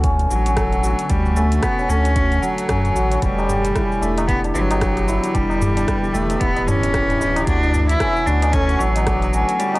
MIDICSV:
0, 0, Header, 1, 7, 480
1, 0, Start_track
1, 0, Tempo, 530973
1, 993, Time_signature, 4, 2, 24, 8
1, 8853, End_track
2, 0, Start_track
2, 0, Title_t, "Santur"
2, 0, Program_c, 0, 15
2, 0, Note_on_c, 0, 66, 76
2, 0, Note_on_c, 0, 69, 80
2, 0, Note_on_c, 0, 71, 84
2, 35, Note_on_c, 0, 61, 86
2, 271, Note_off_c, 0, 66, 0
2, 274, Note_on_c, 0, 66, 78
2, 414, Note_off_c, 0, 61, 0
2, 418, Note_on_c, 0, 61, 74
2, 513, Note_off_c, 0, 69, 0
2, 517, Note_on_c, 0, 69, 87
2, 586, Note_off_c, 0, 71, 0
2, 653, Note_off_c, 0, 66, 0
2, 657, Note_on_c, 0, 66, 79
2, 750, Note_off_c, 0, 66, 0
2, 754, Note_on_c, 0, 66, 79
2, 1231, Note_off_c, 0, 61, 0
2, 1235, Note_on_c, 0, 61, 74
2, 1468, Note_off_c, 0, 66, 0
2, 1472, Note_on_c, 0, 66, 81
2, 1613, Note_off_c, 0, 61, 0
2, 1616, Note_on_c, 0, 61, 76
2, 1708, Note_off_c, 0, 69, 0
2, 1711, Note_on_c, 0, 69, 75
2, 1851, Note_off_c, 0, 66, 0
2, 1854, Note_on_c, 0, 66, 74
2, 1951, Note_off_c, 0, 66, 0
2, 1954, Note_on_c, 0, 66, 77
2, 2427, Note_off_c, 0, 61, 0
2, 2431, Note_on_c, 0, 61, 88
2, 2668, Note_off_c, 0, 66, 0
2, 2671, Note_on_c, 0, 66, 79
2, 2807, Note_off_c, 0, 61, 0
2, 2811, Note_on_c, 0, 61, 73
2, 2912, Note_on_c, 0, 71, 75
2, 3054, Note_on_c, 0, 67, 77
2, 3108, Note_off_c, 0, 66, 0
2, 3149, Note_off_c, 0, 67, 0
2, 3153, Note_on_c, 0, 67, 77
2, 3393, Note_on_c, 0, 64, 74
2, 3632, Note_on_c, 0, 62, 76
2, 3686, Note_off_c, 0, 61, 0
2, 3868, Note_off_c, 0, 67, 0
2, 3872, Note_on_c, 0, 67, 77
2, 4011, Note_off_c, 0, 62, 0
2, 4015, Note_on_c, 0, 62, 76
2, 4107, Note_off_c, 0, 71, 0
2, 4111, Note_on_c, 0, 71, 74
2, 4246, Note_off_c, 0, 67, 0
2, 4250, Note_on_c, 0, 67, 75
2, 4345, Note_off_c, 0, 67, 0
2, 4348, Note_on_c, 0, 67, 87
2, 4358, Note_off_c, 0, 69, 0
2, 4588, Note_off_c, 0, 64, 0
2, 4591, Note_on_c, 0, 64, 79
2, 4827, Note_off_c, 0, 62, 0
2, 4830, Note_on_c, 0, 62, 84
2, 5068, Note_off_c, 0, 67, 0
2, 5072, Note_on_c, 0, 67, 74
2, 5207, Note_off_c, 0, 62, 0
2, 5211, Note_on_c, 0, 62, 70
2, 5305, Note_off_c, 0, 71, 0
2, 5309, Note_on_c, 0, 71, 80
2, 5449, Note_off_c, 0, 67, 0
2, 5452, Note_on_c, 0, 67, 77
2, 5545, Note_off_c, 0, 67, 0
2, 5549, Note_on_c, 0, 67, 77
2, 5786, Note_off_c, 0, 64, 0
2, 5790, Note_on_c, 0, 64, 87
2, 6028, Note_off_c, 0, 62, 0
2, 6031, Note_on_c, 0, 62, 70
2, 6269, Note_off_c, 0, 67, 0
2, 6273, Note_on_c, 0, 67, 89
2, 6409, Note_off_c, 0, 62, 0
2, 6412, Note_on_c, 0, 62, 77
2, 6508, Note_off_c, 0, 71, 0
2, 6511, Note_on_c, 0, 71, 77
2, 6653, Note_off_c, 0, 67, 0
2, 6656, Note_on_c, 0, 67, 74
2, 6753, Note_on_c, 0, 66, 78
2, 6807, Note_off_c, 0, 67, 0
2, 6991, Note_off_c, 0, 62, 0
2, 6995, Note_on_c, 0, 62, 76
2, 7236, Note_on_c, 0, 61, 75
2, 7290, Note_off_c, 0, 62, 0
2, 7472, Note_off_c, 0, 66, 0
2, 7476, Note_on_c, 0, 66, 81
2, 7613, Note_off_c, 0, 61, 0
2, 7616, Note_on_c, 0, 61, 82
2, 7715, Note_on_c, 0, 69, 86
2, 7854, Note_off_c, 0, 66, 0
2, 7858, Note_on_c, 0, 66, 81
2, 7955, Note_off_c, 0, 66, 0
2, 7958, Note_on_c, 0, 66, 75
2, 8202, Note_on_c, 0, 62, 89
2, 8256, Note_off_c, 0, 61, 0
2, 8440, Note_on_c, 0, 61, 79
2, 8495, Note_off_c, 0, 62, 0
2, 8674, Note_off_c, 0, 66, 0
2, 8678, Note_on_c, 0, 66, 83
2, 8816, Note_off_c, 0, 61, 0
2, 8820, Note_on_c, 0, 61, 73
2, 8853, Note_off_c, 0, 61, 0
2, 8853, Note_off_c, 0, 64, 0
2, 8853, Note_off_c, 0, 66, 0
2, 8853, Note_off_c, 0, 69, 0
2, 8853, Note_off_c, 0, 71, 0
2, 8853, End_track
3, 0, Start_track
3, 0, Title_t, "Ambient pad"
3, 0, Program_c, 1, 92
3, 0, Note_on_c, 1, 50, 82
3, 0, Note_on_c, 1, 57, 83
3, 0, Note_on_c, 1, 59, 67
3, 0, Note_on_c, 1, 73, 71
3, 0, Note_on_c, 1, 78, 73
3, 460, Note_off_c, 1, 59, 0
3, 2913, Note_off_c, 1, 57, 0
3, 3139, Note_on_c, 1, 52, 81
3, 3374, Note_on_c, 1, 59, 78
3, 3842, Note_off_c, 1, 73, 0
3, 3958, Note_on_c, 1, 71, 70
3, 4469, Note_off_c, 1, 78, 0
3, 4576, Note_on_c, 1, 64, 80
3, 6756, Note_off_c, 1, 52, 0
3, 7145, Note_on_c, 1, 57, 72
3, 7396, Note_off_c, 1, 71, 0
3, 7484, Note_on_c, 1, 66, 92
3, 7980, Note_on_c, 1, 73, 83
3, 8120, Note_off_c, 1, 59, 0
3, 8196, Note_off_c, 1, 64, 0
3, 8853, Note_off_c, 1, 50, 0
3, 8853, Note_off_c, 1, 57, 0
3, 8853, Note_off_c, 1, 66, 0
3, 8853, Note_off_c, 1, 73, 0
3, 8853, End_track
4, 0, Start_track
4, 0, Title_t, "Cello"
4, 0, Program_c, 2, 42
4, 274, Note_on_c, 2, 54, 94
4, 991, Note_on_c, 2, 55, 92
4, 1005, Note_off_c, 2, 54, 0
4, 1232, Note_on_c, 2, 57, 93
4, 1246, Note_off_c, 2, 55, 0
4, 1467, Note_on_c, 2, 59, 88
4, 1481, Note_off_c, 2, 57, 0
4, 1713, Note_on_c, 2, 61, 100
4, 1726, Note_off_c, 2, 59, 0
4, 2190, Note_on_c, 2, 54, 96
4, 2203, Note_off_c, 2, 61, 0
4, 2909, Note_on_c, 2, 55, 98
4, 2922, Note_off_c, 2, 54, 0
4, 3624, Note_on_c, 2, 57, 93
4, 3638, Note_off_c, 2, 55, 0
4, 3858, Note_off_c, 2, 57, 0
4, 3863, Note_on_c, 2, 59, 100
4, 3973, Note_off_c, 2, 59, 0
4, 4108, Note_on_c, 2, 54, 102
4, 4824, Note_on_c, 2, 55, 106
4, 4837, Note_off_c, 2, 54, 0
4, 5545, Note_on_c, 2, 57, 99
4, 5559, Note_off_c, 2, 55, 0
4, 5786, Note_on_c, 2, 59, 113
4, 5800, Note_off_c, 2, 57, 0
4, 6029, Note_on_c, 2, 61, 111
4, 6042, Note_off_c, 2, 59, 0
4, 6742, Note_off_c, 2, 61, 0
4, 6747, Note_on_c, 2, 62, 115
4, 7105, Note_off_c, 2, 62, 0
4, 7132, Note_on_c, 2, 64, 122
4, 7468, Note_on_c, 2, 62, 108
4, 7482, Note_off_c, 2, 64, 0
4, 7707, Note_on_c, 2, 61, 118
4, 7720, Note_off_c, 2, 62, 0
4, 7948, Note_on_c, 2, 54, 113
4, 7961, Note_off_c, 2, 61, 0
4, 8669, Note_on_c, 2, 55, 99
4, 8682, Note_off_c, 2, 54, 0
4, 8853, Note_off_c, 2, 55, 0
4, 8853, End_track
5, 0, Start_track
5, 0, Title_t, "Sub bass"
5, 0, Program_c, 3, 38
5, 0, Note_on_c, 3, 38, 101
5, 242, Note_off_c, 3, 38, 0
5, 272, Note_on_c, 3, 33, 95
5, 850, Note_off_c, 3, 33, 0
5, 993, Note_on_c, 3, 38, 91
5, 1442, Note_off_c, 3, 38, 0
5, 1711, Note_on_c, 3, 38, 102
5, 2162, Note_off_c, 3, 38, 0
5, 2433, Note_on_c, 3, 42, 81
5, 2635, Note_off_c, 3, 42, 0
5, 2674, Note_on_c, 3, 33, 79
5, 2875, Note_off_c, 3, 33, 0
5, 2915, Note_on_c, 3, 28, 92
5, 3363, Note_off_c, 3, 28, 0
5, 3633, Note_on_c, 3, 28, 102
5, 4083, Note_off_c, 3, 28, 0
5, 4112, Note_on_c, 3, 31, 95
5, 4690, Note_off_c, 3, 31, 0
5, 4833, Note_on_c, 3, 28, 100
5, 5283, Note_off_c, 3, 28, 0
5, 5551, Note_on_c, 3, 28, 98
5, 5754, Note_off_c, 3, 28, 0
5, 5795, Note_on_c, 3, 26, 83
5, 6723, Note_off_c, 3, 26, 0
5, 6754, Note_on_c, 3, 38, 101
5, 7203, Note_off_c, 3, 38, 0
5, 7473, Note_on_c, 3, 38, 102
5, 7922, Note_off_c, 3, 38, 0
5, 7955, Note_on_c, 3, 33, 91
5, 8532, Note_off_c, 3, 33, 0
5, 8853, End_track
6, 0, Start_track
6, 0, Title_t, "Tabla"
6, 3060, Note_on_c, 9, 60, 60
6, 3151, Note_off_c, 9, 60, 0
6, 3156, Note_on_c, 9, 64, 87
6, 3246, Note_off_c, 9, 64, 0
6, 3778, Note_on_c, 9, 60, 70
6, 3869, Note_off_c, 9, 60, 0
6, 4107, Note_on_c, 9, 63, 64
6, 4197, Note_off_c, 9, 63, 0
6, 4260, Note_on_c, 9, 60, 86
6, 4260, Note_on_c, 9, 63, 66
6, 4350, Note_off_c, 9, 60, 0
6, 4351, Note_off_c, 9, 63, 0
6, 4491, Note_on_c, 9, 60, 54
6, 4493, Note_on_c, 9, 63, 67
6, 4582, Note_off_c, 9, 60, 0
6, 4584, Note_off_c, 9, 63, 0
6, 4603, Note_on_c, 9, 63, 49
6, 4693, Note_off_c, 9, 63, 0
6, 4969, Note_on_c, 9, 60, 62
6, 5060, Note_off_c, 9, 60, 0
6, 5076, Note_on_c, 9, 64, 96
6, 5166, Note_off_c, 9, 64, 0
6, 5554, Note_on_c, 9, 63, 65
6, 5644, Note_off_c, 9, 63, 0
6, 5701, Note_on_c, 9, 60, 69
6, 5791, Note_off_c, 9, 60, 0
6, 5932, Note_on_c, 9, 60, 71
6, 5939, Note_on_c, 9, 63, 63
6, 6022, Note_off_c, 9, 60, 0
6, 6030, Note_off_c, 9, 63, 0
6, 6036, Note_on_c, 9, 64, 89
6, 6127, Note_off_c, 9, 64, 0
6, 6166, Note_on_c, 9, 63, 69
6, 6256, Note_off_c, 9, 63, 0
6, 6417, Note_on_c, 9, 64, 93
6, 6507, Note_off_c, 9, 64, 0
6, 6508, Note_on_c, 9, 63, 59
6, 6509, Note_on_c, 9, 60, 40
6, 6598, Note_off_c, 9, 63, 0
6, 6600, Note_off_c, 9, 60, 0
6, 6654, Note_on_c, 9, 60, 74
6, 6744, Note_off_c, 9, 60, 0
6, 6899, Note_on_c, 9, 60, 66
6, 6989, Note_off_c, 9, 60, 0
6, 6998, Note_on_c, 9, 64, 82
6, 7088, Note_off_c, 9, 64, 0
6, 7613, Note_on_c, 9, 60, 81
6, 7704, Note_off_c, 9, 60, 0
6, 7959, Note_on_c, 9, 63, 64
6, 8049, Note_off_c, 9, 63, 0
6, 8101, Note_on_c, 9, 63, 72
6, 8110, Note_on_c, 9, 60, 77
6, 8191, Note_off_c, 9, 63, 0
6, 8200, Note_off_c, 9, 60, 0
6, 8337, Note_on_c, 9, 63, 74
6, 8339, Note_on_c, 9, 60, 60
6, 8427, Note_off_c, 9, 63, 0
6, 8430, Note_off_c, 9, 60, 0
6, 8445, Note_on_c, 9, 63, 58
6, 8535, Note_off_c, 9, 63, 0
6, 8809, Note_on_c, 9, 60, 73
6, 8853, Note_off_c, 9, 60, 0
6, 8853, End_track
7, 0, Start_track
7, 0, Title_t, "Drums"
7, 34, Note_on_c, 9, 42, 53
7, 36, Note_on_c, 9, 36, 108
7, 38, Note_on_c, 9, 69, 45
7, 124, Note_off_c, 9, 42, 0
7, 126, Note_off_c, 9, 36, 0
7, 128, Note_off_c, 9, 69, 0
7, 175, Note_on_c, 9, 42, 31
7, 179, Note_on_c, 9, 69, 22
7, 266, Note_off_c, 9, 42, 0
7, 270, Note_off_c, 9, 69, 0
7, 278, Note_on_c, 9, 69, 80
7, 368, Note_off_c, 9, 69, 0
7, 416, Note_on_c, 9, 42, 47
7, 420, Note_on_c, 9, 69, 36
7, 507, Note_off_c, 9, 42, 0
7, 511, Note_off_c, 9, 69, 0
7, 512, Note_on_c, 9, 37, 106
7, 512, Note_on_c, 9, 42, 53
7, 515, Note_on_c, 9, 36, 116
7, 517, Note_on_c, 9, 69, 46
7, 603, Note_off_c, 9, 37, 0
7, 603, Note_off_c, 9, 42, 0
7, 605, Note_off_c, 9, 36, 0
7, 607, Note_off_c, 9, 69, 0
7, 655, Note_on_c, 9, 42, 28
7, 659, Note_on_c, 9, 69, 23
7, 746, Note_off_c, 9, 42, 0
7, 750, Note_off_c, 9, 69, 0
7, 756, Note_on_c, 9, 69, 85
7, 847, Note_off_c, 9, 69, 0
7, 893, Note_on_c, 9, 42, 44
7, 897, Note_on_c, 9, 69, 35
7, 984, Note_off_c, 9, 42, 0
7, 988, Note_off_c, 9, 69, 0
7, 990, Note_on_c, 9, 42, 55
7, 994, Note_on_c, 9, 36, 113
7, 994, Note_on_c, 9, 69, 47
7, 1081, Note_off_c, 9, 42, 0
7, 1085, Note_off_c, 9, 36, 0
7, 1085, Note_off_c, 9, 69, 0
7, 1135, Note_on_c, 9, 69, 22
7, 1225, Note_off_c, 9, 69, 0
7, 1234, Note_on_c, 9, 69, 83
7, 1324, Note_off_c, 9, 69, 0
7, 1373, Note_on_c, 9, 42, 44
7, 1377, Note_on_c, 9, 69, 36
7, 1463, Note_off_c, 9, 42, 0
7, 1467, Note_off_c, 9, 69, 0
7, 1470, Note_on_c, 9, 37, 100
7, 1470, Note_on_c, 9, 42, 54
7, 1474, Note_on_c, 9, 36, 106
7, 1474, Note_on_c, 9, 69, 48
7, 1560, Note_off_c, 9, 37, 0
7, 1560, Note_off_c, 9, 42, 0
7, 1564, Note_off_c, 9, 36, 0
7, 1565, Note_off_c, 9, 69, 0
7, 1617, Note_on_c, 9, 69, 22
7, 1708, Note_off_c, 9, 69, 0
7, 1715, Note_on_c, 9, 69, 83
7, 1806, Note_off_c, 9, 69, 0
7, 1854, Note_on_c, 9, 42, 40
7, 1858, Note_on_c, 9, 69, 36
7, 1944, Note_off_c, 9, 42, 0
7, 1948, Note_off_c, 9, 69, 0
7, 1951, Note_on_c, 9, 42, 55
7, 1954, Note_on_c, 9, 36, 109
7, 1955, Note_on_c, 9, 69, 48
7, 2041, Note_off_c, 9, 42, 0
7, 2044, Note_off_c, 9, 36, 0
7, 2045, Note_off_c, 9, 69, 0
7, 2095, Note_on_c, 9, 42, 29
7, 2099, Note_on_c, 9, 69, 23
7, 2185, Note_off_c, 9, 42, 0
7, 2189, Note_off_c, 9, 69, 0
7, 2196, Note_on_c, 9, 69, 72
7, 2286, Note_off_c, 9, 69, 0
7, 2334, Note_on_c, 9, 42, 43
7, 2338, Note_on_c, 9, 69, 37
7, 2424, Note_off_c, 9, 42, 0
7, 2428, Note_off_c, 9, 69, 0
7, 2432, Note_on_c, 9, 37, 102
7, 2432, Note_on_c, 9, 42, 54
7, 2434, Note_on_c, 9, 36, 107
7, 2436, Note_on_c, 9, 69, 50
7, 2522, Note_off_c, 9, 37, 0
7, 2522, Note_off_c, 9, 42, 0
7, 2525, Note_off_c, 9, 36, 0
7, 2526, Note_off_c, 9, 69, 0
7, 2575, Note_on_c, 9, 42, 31
7, 2579, Note_on_c, 9, 69, 22
7, 2665, Note_off_c, 9, 42, 0
7, 2669, Note_off_c, 9, 69, 0
7, 2676, Note_on_c, 9, 69, 76
7, 2767, Note_off_c, 9, 69, 0
7, 2816, Note_on_c, 9, 42, 41
7, 2820, Note_on_c, 9, 69, 33
7, 2907, Note_off_c, 9, 42, 0
7, 2911, Note_off_c, 9, 69, 0
7, 2913, Note_on_c, 9, 42, 53
7, 2915, Note_on_c, 9, 36, 107
7, 2917, Note_on_c, 9, 69, 42
7, 3003, Note_off_c, 9, 42, 0
7, 3005, Note_off_c, 9, 36, 0
7, 3007, Note_off_c, 9, 69, 0
7, 3059, Note_on_c, 9, 69, 21
7, 3150, Note_off_c, 9, 69, 0
7, 3158, Note_on_c, 9, 69, 80
7, 3248, Note_off_c, 9, 69, 0
7, 3296, Note_on_c, 9, 42, 43
7, 3300, Note_on_c, 9, 69, 32
7, 3386, Note_off_c, 9, 42, 0
7, 3390, Note_off_c, 9, 69, 0
7, 3394, Note_on_c, 9, 36, 104
7, 3395, Note_on_c, 9, 37, 96
7, 3395, Note_on_c, 9, 42, 54
7, 3399, Note_on_c, 9, 69, 46
7, 3485, Note_off_c, 9, 36, 0
7, 3485, Note_off_c, 9, 37, 0
7, 3485, Note_off_c, 9, 42, 0
7, 3489, Note_off_c, 9, 69, 0
7, 3542, Note_on_c, 9, 69, 21
7, 3632, Note_off_c, 9, 69, 0
7, 3639, Note_on_c, 9, 69, 76
7, 3730, Note_off_c, 9, 69, 0
7, 3775, Note_on_c, 9, 42, 41
7, 3779, Note_on_c, 9, 69, 34
7, 3865, Note_off_c, 9, 42, 0
7, 3870, Note_off_c, 9, 69, 0
7, 3875, Note_on_c, 9, 36, 108
7, 3875, Note_on_c, 9, 42, 52
7, 3879, Note_on_c, 9, 69, 46
7, 3965, Note_off_c, 9, 36, 0
7, 3965, Note_off_c, 9, 42, 0
7, 3969, Note_off_c, 9, 69, 0
7, 4017, Note_on_c, 9, 42, 30
7, 4021, Note_on_c, 9, 69, 23
7, 4107, Note_off_c, 9, 42, 0
7, 4111, Note_off_c, 9, 69, 0
7, 4116, Note_on_c, 9, 69, 78
7, 4207, Note_off_c, 9, 69, 0
7, 4255, Note_on_c, 9, 42, 43
7, 4259, Note_on_c, 9, 69, 37
7, 4345, Note_off_c, 9, 42, 0
7, 4349, Note_off_c, 9, 69, 0
7, 4352, Note_on_c, 9, 37, 103
7, 4352, Note_on_c, 9, 42, 54
7, 4354, Note_on_c, 9, 36, 101
7, 4357, Note_on_c, 9, 69, 45
7, 4443, Note_off_c, 9, 37, 0
7, 4443, Note_off_c, 9, 42, 0
7, 4445, Note_off_c, 9, 36, 0
7, 4447, Note_off_c, 9, 69, 0
7, 4493, Note_on_c, 9, 42, 31
7, 4497, Note_on_c, 9, 69, 22
7, 4583, Note_off_c, 9, 42, 0
7, 4587, Note_off_c, 9, 69, 0
7, 4595, Note_on_c, 9, 69, 80
7, 4686, Note_off_c, 9, 69, 0
7, 4733, Note_on_c, 9, 42, 44
7, 4737, Note_on_c, 9, 69, 33
7, 4824, Note_off_c, 9, 42, 0
7, 4828, Note_off_c, 9, 69, 0
7, 4834, Note_on_c, 9, 36, 101
7, 4835, Note_on_c, 9, 42, 56
7, 4839, Note_on_c, 9, 69, 42
7, 4925, Note_off_c, 9, 36, 0
7, 4925, Note_off_c, 9, 42, 0
7, 4929, Note_off_c, 9, 69, 0
7, 4979, Note_on_c, 9, 69, 20
7, 5070, Note_off_c, 9, 69, 0
7, 5077, Note_on_c, 9, 69, 73
7, 5167, Note_off_c, 9, 69, 0
7, 5216, Note_on_c, 9, 42, 45
7, 5220, Note_on_c, 9, 69, 32
7, 5306, Note_off_c, 9, 42, 0
7, 5310, Note_off_c, 9, 69, 0
7, 5315, Note_on_c, 9, 36, 98
7, 5315, Note_on_c, 9, 37, 97
7, 5315, Note_on_c, 9, 42, 54
7, 5319, Note_on_c, 9, 69, 43
7, 5405, Note_off_c, 9, 36, 0
7, 5405, Note_off_c, 9, 37, 0
7, 5405, Note_off_c, 9, 42, 0
7, 5410, Note_off_c, 9, 69, 0
7, 5459, Note_on_c, 9, 69, 21
7, 5549, Note_off_c, 9, 69, 0
7, 5556, Note_on_c, 9, 69, 79
7, 5646, Note_off_c, 9, 69, 0
7, 5693, Note_on_c, 9, 42, 42
7, 5697, Note_on_c, 9, 69, 32
7, 5784, Note_off_c, 9, 42, 0
7, 5788, Note_off_c, 9, 69, 0
7, 5792, Note_on_c, 9, 42, 57
7, 5795, Note_on_c, 9, 36, 104
7, 5796, Note_on_c, 9, 69, 45
7, 5883, Note_off_c, 9, 42, 0
7, 5886, Note_off_c, 9, 36, 0
7, 5887, Note_off_c, 9, 69, 0
7, 5935, Note_on_c, 9, 42, 30
7, 5939, Note_on_c, 9, 69, 22
7, 6026, Note_off_c, 9, 42, 0
7, 6030, Note_off_c, 9, 69, 0
7, 6039, Note_on_c, 9, 69, 74
7, 6129, Note_off_c, 9, 69, 0
7, 6178, Note_on_c, 9, 42, 45
7, 6182, Note_on_c, 9, 69, 33
7, 6268, Note_off_c, 9, 42, 0
7, 6272, Note_off_c, 9, 69, 0
7, 6273, Note_on_c, 9, 37, 95
7, 6273, Note_on_c, 9, 42, 55
7, 6276, Note_on_c, 9, 36, 101
7, 6277, Note_on_c, 9, 69, 43
7, 6363, Note_off_c, 9, 37, 0
7, 6363, Note_off_c, 9, 42, 0
7, 6366, Note_off_c, 9, 36, 0
7, 6368, Note_off_c, 9, 69, 0
7, 6418, Note_on_c, 9, 42, 31
7, 6422, Note_on_c, 9, 69, 21
7, 6508, Note_off_c, 9, 42, 0
7, 6512, Note_off_c, 9, 69, 0
7, 6521, Note_on_c, 9, 69, 79
7, 6611, Note_off_c, 9, 69, 0
7, 6657, Note_on_c, 9, 42, 43
7, 6661, Note_on_c, 9, 69, 34
7, 6748, Note_off_c, 9, 42, 0
7, 6752, Note_off_c, 9, 69, 0
7, 6755, Note_on_c, 9, 36, 107
7, 6755, Note_on_c, 9, 42, 57
7, 6759, Note_on_c, 9, 69, 42
7, 6845, Note_off_c, 9, 42, 0
7, 6846, Note_off_c, 9, 36, 0
7, 6849, Note_off_c, 9, 69, 0
7, 6900, Note_on_c, 9, 69, 21
7, 6990, Note_off_c, 9, 69, 0
7, 6997, Note_on_c, 9, 69, 76
7, 7087, Note_off_c, 9, 69, 0
7, 7136, Note_on_c, 9, 42, 48
7, 7140, Note_on_c, 9, 69, 30
7, 7226, Note_off_c, 9, 42, 0
7, 7230, Note_off_c, 9, 69, 0
7, 7233, Note_on_c, 9, 37, 102
7, 7233, Note_on_c, 9, 42, 56
7, 7235, Note_on_c, 9, 36, 98
7, 7237, Note_on_c, 9, 69, 43
7, 7324, Note_off_c, 9, 37, 0
7, 7324, Note_off_c, 9, 42, 0
7, 7325, Note_off_c, 9, 36, 0
7, 7328, Note_off_c, 9, 69, 0
7, 7379, Note_on_c, 9, 69, 22
7, 7470, Note_off_c, 9, 69, 0
7, 7476, Note_on_c, 9, 69, 70
7, 7567, Note_off_c, 9, 69, 0
7, 7614, Note_on_c, 9, 42, 49
7, 7618, Note_on_c, 9, 69, 34
7, 7705, Note_off_c, 9, 42, 0
7, 7709, Note_off_c, 9, 69, 0
7, 7711, Note_on_c, 9, 42, 63
7, 7715, Note_on_c, 9, 36, 98
7, 7715, Note_on_c, 9, 69, 46
7, 7801, Note_off_c, 9, 42, 0
7, 7806, Note_off_c, 9, 36, 0
7, 7806, Note_off_c, 9, 69, 0
7, 7856, Note_on_c, 9, 42, 31
7, 7860, Note_on_c, 9, 69, 23
7, 7946, Note_off_c, 9, 42, 0
7, 7950, Note_off_c, 9, 69, 0
7, 7958, Note_on_c, 9, 69, 67
7, 8048, Note_off_c, 9, 69, 0
7, 8097, Note_on_c, 9, 42, 50
7, 8101, Note_on_c, 9, 69, 33
7, 8187, Note_off_c, 9, 42, 0
7, 8191, Note_off_c, 9, 69, 0
7, 8195, Note_on_c, 9, 37, 96
7, 8195, Note_on_c, 9, 42, 59
7, 8196, Note_on_c, 9, 36, 98
7, 8200, Note_on_c, 9, 69, 45
7, 8286, Note_off_c, 9, 37, 0
7, 8286, Note_off_c, 9, 42, 0
7, 8287, Note_off_c, 9, 36, 0
7, 8290, Note_off_c, 9, 69, 0
7, 8338, Note_on_c, 9, 42, 33
7, 8342, Note_on_c, 9, 69, 21
7, 8428, Note_off_c, 9, 42, 0
7, 8432, Note_off_c, 9, 69, 0
7, 8438, Note_on_c, 9, 69, 79
7, 8528, Note_off_c, 9, 69, 0
7, 8576, Note_on_c, 9, 42, 42
7, 8580, Note_on_c, 9, 69, 33
7, 8666, Note_off_c, 9, 42, 0
7, 8670, Note_off_c, 9, 69, 0
7, 8675, Note_on_c, 9, 42, 58
7, 8679, Note_on_c, 9, 69, 42
7, 8766, Note_off_c, 9, 42, 0
7, 8770, Note_off_c, 9, 69, 0
7, 8818, Note_on_c, 9, 42, 31
7, 8822, Note_on_c, 9, 69, 21
7, 8853, Note_off_c, 9, 42, 0
7, 8853, Note_off_c, 9, 69, 0
7, 8853, End_track
0, 0, End_of_file